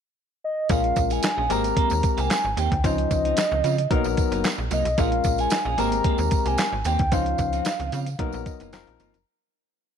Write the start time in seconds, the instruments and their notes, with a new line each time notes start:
0.44 soft synth lead D#5
0.69 fm bass A#1, tine electric piano G#3 C#4 F4 A#4, clean electric guitar C#4 F4 G#4, soft synth lead F5, kick, closed hi-hat, tambourine
0.84 muted clean electric guitar stroke, closed hi-hat
0.96 fm bass A#1, muted clean electric guitar stroke, kick, closed hi-hat, tambourine
1.10 clean electric guitar C#4 F4 G#4, soft synth lead G#5, closed hi-hat, tambourine
1.23 muted clean electric guitar stroke, snare, clap, closed hi-hat, tambourine
1.37 fm bass A#1, clean electric guitar C#4 F4 G#4
1.49 fm bass G#1, tine electric piano G#3 C4 G4 A#4, clean electric guitar A#3 C4 G#4, soft synth lead A#5, closed hi-hat, tambourine
1.64 muted clean electric guitar stroke, closed hi-hat, tambourine
1.76 clean electric guitar A#3 C4 G4, kick, closed hi-hat
1.90 fm bass D#2, muted clean electric guitar stroke, tambourine
2.03 muted clean electric guitar stroke, kick, closed hi-hat, tambourine
2.17 fm bass C2, clean electric guitar A#3 C4 G4, soft synth lead G#5, closed hi-hat, tambourine
2.30 muted clean electric guitar stroke, snare, clap, closed hi-hat, tambourine
2.44 fm bass G#1, muted clean electric guitar stroke
2.57 fm bass D#2, clean electric guitar A#3 C4 G4, soft synth lead G5, closed hi-hat, tambourine
2.71 fm bass D2, muted clean electric guitar stroke, kick, closed hi-hat
2.84 fm bass C#2, tine electric piano F3 C#4 D#4 C5, clean electric guitar F3 C4 D#4, soft synth lead D#5, kick, closed hi-hat, tambourine
2.98 muted clean electric guitar stroke, closed hi-hat
3.11 fm bass C#2, muted clean electric guitar stroke, kick, closed hi-hat, tambourine
3.25 clean electric guitar F3 C4 D#4, closed hi-hat
3.37 muted clean electric guitar stroke, snare, clap, closed hi-hat, tambourine
3.51 fm bass C#2, clean electric guitar F3 C4 D#4
3.64 fm bass C#3, clean electric guitar F3 C4 F4, closed hi-hat, tambourine
3.78 muted clean electric guitar stroke, closed hi-hat
3.90 fm bass B1, tine electric piano F#3 B3 D#4 A#4, clean electric guitar F#3 A#3 D#4, kick, closed hi-hat
4.04 fm bass A#1, muted clean electric guitar stroke, tambourine
4.17 muted clean electric guitar stroke, kick, closed hi-hat, tambourine
4.32 fm bass F#1, clean electric guitar F#3 A#3 D#4, closed hi-hat, tambourine
4.44 muted clean electric guitar stroke, snare, clap, closed hi-hat, tambourine
4.58 fm bass A#1, muted clean electric guitar stroke
4.71 fm bass C2, clean electric guitar F#3 A#3 D#4, soft synth lead D#5, closed hi-hat, tambourine
4.85 fm bass B1, muted clean electric guitar stroke, closed hi-hat, tambourine
4.98 fm bass A#1, tine electric piano G#3 C#4 F4 A#4, clean electric guitar C#4 F4 G#4, soft synth lead F5, kick, closed hi-hat, tambourine
5.12 muted clean electric guitar stroke, closed hi-hat
5.24 fm bass A#1, muted clean electric guitar stroke, kick, closed hi-hat, tambourine
5.38 clean electric guitar C#4 F4 G#4, soft synth lead G#5, closed hi-hat, tambourine
5.50 muted clean electric guitar stroke, snare, clap, closed hi-hat, tambourine
5.65 fm bass A#1, clean electric guitar C#4 F4 G#4
5.78 fm bass G#1, tine electric piano G#3 C4 G4 A#4, clean electric guitar A#3 C4 G#4, soft synth lead A#5, closed hi-hat, tambourine
5.92 muted clean electric guitar stroke, closed hi-hat, tambourine
6.04 clean electric guitar A#3 C4 G4, kick, closed hi-hat
6.18 fm bass D#2, muted clean electric guitar stroke, tambourine
6.31 muted clean electric guitar stroke, kick, closed hi-hat, tambourine
6.46 fm bass C2, clean electric guitar A#3 C4 G4, soft synth lead G#5, closed hi-hat, tambourine
6.58 snare, clap, closed hi-hat, tambourine
6.73 fm bass G#1, muted clean electric guitar stroke
6.84 fm bass D#2, clean electric guitar A#3 C4 G4, soft synth lead G5, closed hi-hat, tambourine
6.99 fm bass D2, muted clean electric guitar stroke, kick, closed hi-hat
7.12 fm bass C#2, tine electric piano F3 C#4 D#4 C5, clean electric guitar F3 C4 D#4, soft synth lead F5, kick, closed hi-hat, tambourine
7.26 muted clean electric guitar stroke, closed hi-hat
7.38 fm bass C#2, muted clean electric guitar stroke, kick, closed hi-hat, tambourine
7.52 clean electric guitar F3 C4 D#4, closed hi-hat, tambourine
7.65 snare, clap, closed hi-hat, tambourine
7.80 fm bass C#2, clean electric guitar F3 C4 D#4, closed hi-hat
7.92 fm bass C#3, clean electric guitar F3 C4 F4, closed hi-hat, tambourine
8.06 muted clean electric guitar stroke, closed hi-hat, tambourine
8.19 fm bass B1, tine electric piano F#3 B3 D#4 A#4, clean electric guitar F#3 A#3 D#4, kick, closed hi-hat
8.32 fm bass A#1, muted clean electric guitar stroke, tambourine
8.46 tine electric piano D#5, kick, closed hi-hat, tambourine
8.60 fm bass F#1, clean electric guitar F#3 A#3 D#4, closed hi-hat, tambourine
8.72 fm bass F1, tine electric piano F3 C4 D#4 A#4 F5, muted clean electric guitar stroke, snare, clap, closed hi-hat, tambourine
8.87 fm bass A#1, closed hi-hat
8.99 fm bass G1, clean electric guitar F3 A#3 D#4, tine electric piano A#5, closed hi-hat, tambourine
9.13 fm bass F#1, muted clean electric guitar stroke, closed hi-hat, tambourine